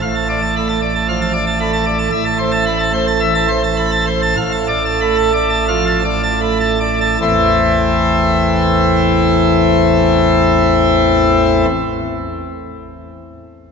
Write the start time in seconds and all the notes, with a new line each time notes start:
0.02 A1 A2 F5
0.15 A5
0.29 D5
0.42 A5
0.56 A3 B5
0.68 A5
0.82 D5
0.95 A5
1.08 F3 F5
1.21 A5
1.33 D5
1.46 A5
1.60 A3 B5
1.73 A5
1.86 D5
1.99 A5
2.12 A1 A2 E5
2.25 A5
2.39 C5
2.51 A5
2.66 A3 B5
2.79 A5
2.93 C5
3.07 A5
3.20 E3 E5
3.35 A5
3.48 C5
3.63 A5
3.77 A3 B5
3.91 A5
4.07 C5
4.22 A5
4.37 A1 A2 F5
4.52 A5
4.68 D5
4.85 A5
5.01 A3 B5
5.17 A5
5.33 D5
5.50 A5
5.68 F3 F5
5.87 A5
6.05 D5
6.23 A5
6.41 A3 B5
6.61 A5
6.80 D5
7.01 A5
7.21 A1 E2 E3 A3 C4 E4